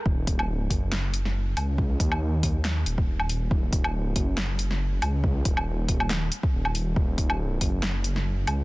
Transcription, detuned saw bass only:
0, 0, Header, 1, 2, 480
1, 0, Start_track
1, 0, Key_signature, -6, "minor"
1, 0, Tempo, 431655
1, 63, Time_signature, 4, 2, 24, 8
1, 9610, End_track
2, 0, Start_track
2, 0, Title_t, "Detuned saw bass"
2, 0, Program_c, 0, 39
2, 63, Note_on_c, 0, 27, 101
2, 563, Note_off_c, 0, 27, 0
2, 563, Note_on_c, 0, 26, 101
2, 765, Note_off_c, 0, 26, 0
2, 782, Note_on_c, 0, 30, 99
2, 1725, Note_off_c, 0, 30, 0
2, 1741, Note_on_c, 0, 37, 99
2, 2204, Note_off_c, 0, 37, 0
2, 2223, Note_on_c, 0, 39, 101
2, 3165, Note_off_c, 0, 39, 0
2, 3182, Note_on_c, 0, 27, 101
2, 3885, Note_off_c, 0, 27, 0
2, 3903, Note_on_c, 0, 27, 99
2, 4403, Note_off_c, 0, 27, 0
2, 4403, Note_on_c, 0, 26, 99
2, 4605, Note_off_c, 0, 26, 0
2, 4623, Note_on_c, 0, 30, 98
2, 5566, Note_off_c, 0, 30, 0
2, 5583, Note_on_c, 0, 37, 96
2, 6045, Note_off_c, 0, 37, 0
2, 6063, Note_on_c, 0, 27, 100
2, 7006, Note_off_c, 0, 27, 0
2, 7262, Note_on_c, 0, 27, 96
2, 7725, Note_off_c, 0, 27, 0
2, 7743, Note_on_c, 0, 27, 97
2, 8446, Note_off_c, 0, 27, 0
2, 8463, Note_on_c, 0, 30, 95
2, 9406, Note_off_c, 0, 30, 0
2, 9422, Note_on_c, 0, 37, 103
2, 9610, Note_off_c, 0, 37, 0
2, 9610, End_track
0, 0, End_of_file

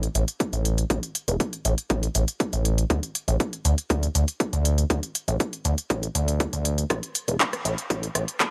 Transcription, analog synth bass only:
0, 0, Header, 1, 2, 480
1, 0, Start_track
1, 0, Tempo, 500000
1, 865, Time_signature, 4, 2, 24, 8
1, 8165, End_track
2, 0, Start_track
2, 0, Title_t, "Analog synth bass"
2, 0, Program_c, 0, 38
2, 144, Note_on_c, 0, 33, 85
2, 228, Note_off_c, 0, 33, 0
2, 507, Note_on_c, 0, 33, 81
2, 804, Note_off_c, 0, 33, 0
2, 864, Note_on_c, 0, 33, 93
2, 949, Note_off_c, 0, 33, 0
2, 1228, Note_on_c, 0, 28, 93
2, 1307, Note_off_c, 0, 28, 0
2, 1584, Note_on_c, 0, 33, 98
2, 1669, Note_off_c, 0, 33, 0
2, 1824, Note_on_c, 0, 33, 99
2, 1990, Note_off_c, 0, 33, 0
2, 2064, Note_on_c, 0, 33, 82
2, 2148, Note_off_c, 0, 33, 0
2, 2427, Note_on_c, 0, 33, 84
2, 2724, Note_off_c, 0, 33, 0
2, 2783, Note_on_c, 0, 38, 93
2, 2868, Note_off_c, 0, 38, 0
2, 3147, Note_on_c, 0, 33, 95
2, 3227, Note_off_c, 0, 33, 0
2, 3503, Note_on_c, 0, 38, 100
2, 3588, Note_off_c, 0, 38, 0
2, 3744, Note_on_c, 0, 38, 95
2, 3910, Note_off_c, 0, 38, 0
2, 3984, Note_on_c, 0, 38, 84
2, 4068, Note_off_c, 0, 38, 0
2, 4347, Note_on_c, 0, 38, 83
2, 4644, Note_off_c, 0, 38, 0
2, 4704, Note_on_c, 0, 38, 94
2, 4788, Note_off_c, 0, 38, 0
2, 5068, Note_on_c, 0, 33, 96
2, 5147, Note_off_c, 0, 33, 0
2, 5423, Note_on_c, 0, 38, 100
2, 5508, Note_off_c, 0, 38, 0
2, 5664, Note_on_c, 0, 33, 101
2, 5830, Note_off_c, 0, 33, 0
2, 5903, Note_on_c, 0, 38, 89
2, 6204, Note_off_c, 0, 38, 0
2, 6268, Note_on_c, 0, 38, 81
2, 6565, Note_off_c, 0, 38, 0
2, 6625, Note_on_c, 0, 33, 93
2, 6709, Note_off_c, 0, 33, 0
2, 6988, Note_on_c, 0, 28, 92
2, 7067, Note_off_c, 0, 28, 0
2, 7343, Note_on_c, 0, 33, 101
2, 7428, Note_off_c, 0, 33, 0
2, 7585, Note_on_c, 0, 33, 94
2, 7750, Note_off_c, 0, 33, 0
2, 7824, Note_on_c, 0, 33, 85
2, 7908, Note_off_c, 0, 33, 0
2, 8165, End_track
0, 0, End_of_file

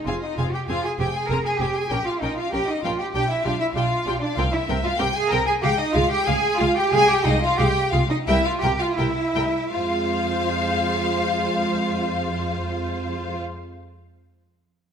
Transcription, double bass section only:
0, 0, Header, 1, 2, 480
1, 0, Start_track
1, 0, Key_signature, -4, "minor"
1, 0, Tempo, 615385
1, 1495, Time_signature, 4, 2, 24, 8
1, 3896, Tempo, 649351
1, 5816, Tempo, 697674
1, 6776, Tempo, 724638
1, 10710, End_track
2, 0, Start_track
2, 0, Title_t, "Double bass section"
2, 0, Program_c, 0, 48
2, 54, Note_on_c, 0, 29, 56
2, 117, Note_off_c, 0, 29, 0
2, 296, Note_on_c, 0, 29, 58
2, 358, Note_off_c, 0, 29, 0
2, 538, Note_on_c, 0, 29, 57
2, 601, Note_off_c, 0, 29, 0
2, 777, Note_on_c, 0, 29, 62
2, 839, Note_off_c, 0, 29, 0
2, 1017, Note_on_c, 0, 29, 60
2, 1080, Note_off_c, 0, 29, 0
2, 1255, Note_on_c, 0, 29, 49
2, 1318, Note_off_c, 0, 29, 0
2, 1493, Note_on_c, 0, 34, 65
2, 1555, Note_off_c, 0, 34, 0
2, 1734, Note_on_c, 0, 34, 52
2, 1796, Note_off_c, 0, 34, 0
2, 1972, Note_on_c, 0, 34, 52
2, 2034, Note_off_c, 0, 34, 0
2, 2212, Note_on_c, 0, 34, 65
2, 2274, Note_off_c, 0, 34, 0
2, 2451, Note_on_c, 0, 35, 64
2, 2513, Note_off_c, 0, 35, 0
2, 2685, Note_on_c, 0, 35, 62
2, 2747, Note_off_c, 0, 35, 0
2, 2924, Note_on_c, 0, 35, 62
2, 2986, Note_off_c, 0, 35, 0
2, 3169, Note_on_c, 0, 35, 56
2, 3231, Note_off_c, 0, 35, 0
2, 3408, Note_on_c, 0, 36, 73
2, 3470, Note_off_c, 0, 36, 0
2, 3654, Note_on_c, 0, 36, 76
2, 3716, Note_off_c, 0, 36, 0
2, 3899, Note_on_c, 0, 36, 62
2, 3958, Note_off_c, 0, 36, 0
2, 4132, Note_on_c, 0, 36, 69
2, 4192, Note_off_c, 0, 36, 0
2, 4366, Note_on_c, 0, 37, 72
2, 4425, Note_off_c, 0, 37, 0
2, 4603, Note_on_c, 0, 37, 81
2, 4662, Note_off_c, 0, 37, 0
2, 4844, Note_on_c, 0, 37, 78
2, 4903, Note_off_c, 0, 37, 0
2, 5082, Note_on_c, 0, 37, 72
2, 5141, Note_off_c, 0, 37, 0
2, 5324, Note_on_c, 0, 36, 75
2, 5383, Note_off_c, 0, 36, 0
2, 5568, Note_on_c, 0, 36, 85
2, 5627, Note_off_c, 0, 36, 0
2, 5815, Note_on_c, 0, 36, 83
2, 5871, Note_off_c, 0, 36, 0
2, 6050, Note_on_c, 0, 36, 82
2, 6105, Note_off_c, 0, 36, 0
2, 6285, Note_on_c, 0, 36, 75
2, 6340, Note_off_c, 0, 36, 0
2, 6527, Note_on_c, 0, 36, 76
2, 6582, Note_off_c, 0, 36, 0
2, 6772, Note_on_c, 0, 36, 73
2, 6825, Note_off_c, 0, 36, 0
2, 7015, Note_on_c, 0, 36, 68
2, 7068, Note_off_c, 0, 36, 0
2, 7260, Note_on_c, 0, 41, 67
2, 9692, Note_off_c, 0, 41, 0
2, 10710, End_track
0, 0, End_of_file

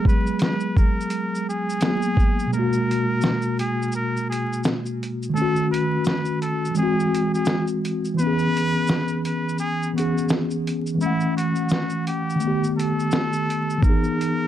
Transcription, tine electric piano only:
0, 0, Header, 1, 2, 480
1, 0, Start_track
1, 0, Key_signature, 5, "minor"
1, 0, Tempo, 705882
1, 1719, Time_signature, 4, 2, 24, 8
1, 9843, End_track
2, 0, Start_track
2, 0, Title_t, "Tine electric piano"
2, 0, Program_c, 0, 4
2, 0, Control_c, 0, 64, 127
2, 0, Note_on_c, 0, 54, 67
2, 0, Note_on_c, 0, 56, 60
2, 0, Note_on_c, 0, 59, 56
2, 0, Note_on_c, 0, 68, 63
2, 1197, Note_off_c, 0, 54, 0
2, 1210, Note_off_c, 0, 56, 0
2, 1224, Note_off_c, 0, 59, 0
2, 1232, Note_on_c, 0, 54, 53
2, 1237, Note_off_c, 0, 68, 0
2, 1244, Note_on_c, 0, 58, 45
2, 1256, Note_on_c, 0, 59, 45
2, 1272, Note_on_c, 0, 68, 56
2, 1677, Note_on_c, 0, 47, 57
2, 1709, Note_on_c, 0, 56, 54
2, 1716, Note_off_c, 0, 54, 0
2, 1721, Note_off_c, 0, 58, 0
2, 1727, Control_c, 0, 64, 0
2, 1728, Note_off_c, 0, 59, 0
2, 1734, Note_on_c, 0, 58, 55
2, 1736, Note_off_c, 0, 68, 0
2, 1761, Note_on_c, 0, 66, 69
2, 1853, Control_c, 0, 64, 127
2, 3591, Note_off_c, 0, 47, 0
2, 3601, Note_on_c, 0, 51, 60
2, 3607, Note_off_c, 0, 56, 0
2, 3619, Note_off_c, 0, 58, 0
2, 3630, Note_on_c, 0, 57, 57
2, 3633, Note_off_c, 0, 66, 0
2, 3648, Control_c, 0, 64, 0
2, 3656, Note_on_c, 0, 61, 57
2, 3684, Note_on_c, 0, 66, 73
2, 3751, Control_c, 0, 64, 127
2, 4561, Note_off_c, 0, 51, 0
2, 4562, Note_on_c, 0, 52, 61
2, 4575, Note_off_c, 0, 57, 0
2, 4588, Note_on_c, 0, 56, 64
2, 4589, Note_off_c, 0, 61, 0
2, 4603, Note_off_c, 0, 66, 0
2, 4606, Control_c, 0, 64, 0
2, 4618, Note_on_c, 0, 60, 55
2, 4645, Note_on_c, 0, 66, 72
2, 4745, Control_c, 0, 64, 127
2, 5521, Note_off_c, 0, 52, 0
2, 5534, Note_off_c, 0, 56, 0
2, 5539, Note_on_c, 0, 52, 68
2, 5549, Note_off_c, 0, 60, 0
2, 5563, Note_off_c, 0, 66, 0
2, 5568, Control_c, 0, 64, 0
2, 5569, Note_on_c, 0, 59, 59
2, 5597, Note_on_c, 0, 61, 62
2, 5622, Note_on_c, 0, 68, 69
2, 5707, Control_c, 0, 64, 127
2, 6725, Note_off_c, 0, 52, 0
2, 6740, Note_off_c, 0, 59, 0
2, 6754, Note_off_c, 0, 61, 0
2, 6756, Note_on_c, 0, 52, 50
2, 6766, Note_on_c, 0, 59, 45
2, 6767, Note_off_c, 0, 68, 0
2, 6783, Note_on_c, 0, 61, 47
2, 6796, Note_on_c, 0, 68, 52
2, 7433, Note_off_c, 0, 52, 0
2, 7441, Note_on_c, 0, 52, 60
2, 7465, Note_on_c, 0, 56, 48
2, 7483, Note_off_c, 0, 59, 0
2, 7486, Note_off_c, 0, 61, 0
2, 7487, Control_c, 0, 64, 0
2, 7494, Note_on_c, 0, 61, 59
2, 7498, Note_off_c, 0, 68, 0
2, 7515, Note_on_c, 0, 57, 56
2, 7521, Note_on_c, 0, 78, 68
2, 7525, Note_off_c, 0, 56, 0
2, 7589, Control_c, 0, 64, 127
2, 8401, Note_off_c, 0, 52, 0
2, 8402, Note_on_c, 0, 51, 59
2, 8422, Note_off_c, 0, 57, 0
2, 8428, Note_off_c, 0, 61, 0
2, 8430, Note_on_c, 0, 57, 56
2, 8441, Note_off_c, 0, 78, 0
2, 8449, Control_c, 0, 64, 0
2, 8458, Note_on_c, 0, 59, 54
2, 8484, Note_on_c, 0, 67, 70
2, 8578, Control_c, 0, 64, 127
2, 9361, Note_off_c, 0, 51, 0
2, 9369, Note_on_c, 0, 52, 63
2, 9375, Note_off_c, 0, 57, 0
2, 9386, Note_off_c, 0, 59, 0
2, 9394, Note_on_c, 0, 59, 57
2, 9403, Note_off_c, 0, 67, 0
2, 9409, Control_c, 0, 64, 0
2, 9422, Note_on_c, 0, 63, 54
2, 9448, Note_on_c, 0, 68, 69
2, 9527, Control_c, 0, 64, 127
2, 9843, Note_off_c, 0, 52, 0
2, 9843, Note_off_c, 0, 59, 0
2, 9843, Note_off_c, 0, 63, 0
2, 9843, Note_off_c, 0, 68, 0
2, 9843, End_track
0, 0, End_of_file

